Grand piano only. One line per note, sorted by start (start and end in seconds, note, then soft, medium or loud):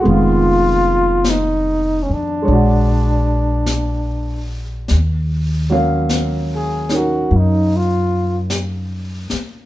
0.01 2.41 G#3 soft
0.01 2.45 B3 soft
0.07 2.47 D#3 soft
0.11 2.50 F4 medium
2.42 4.88 G#3 soft
2.42 4.89 C#5 soft
2.48 4.91 D4 soft
2.52 4.93 F#4 medium
5.70 9.66 F#3 medium
5.70 9.66 A#3 soft
5.70 6.89 C#4 soft
5.70 9.66 F5 medium
6.91 9.66 C#4 soft
6.91 9.66 D#4 soft
6.91 9.66 A#4 soft